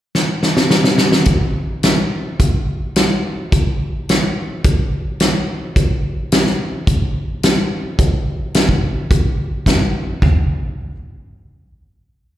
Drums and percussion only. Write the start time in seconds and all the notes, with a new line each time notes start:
0.15 snare
0.43 snare
0.57 snare
0.70 snare
0.84 snare
0.98 snare
1.12 snare
1.25 kick, closed hi-hat
1.83 snare, closed hi-hat
2.40 kick, closed hi-hat
2.96 snare, closed hi-hat
3.52 kick, closed hi-hat
4.09 snare, closed hi-hat
4.64 kick, closed hi-hat
5.20 snare, closed hi-hat
5.76 kick, closed hi-hat
6.32 snare, closed hi-hat
6.47 snare
6.87 kick, closed hi-hat
7.43 snare, closed hi-hat
7.99 kick, closed hi-hat
8.54 snare, closed hi-hat
8.69 kick
9.11 kick, closed hi-hat
9.66 kick, snare, closed hi-hat
10.22 kick, floor tom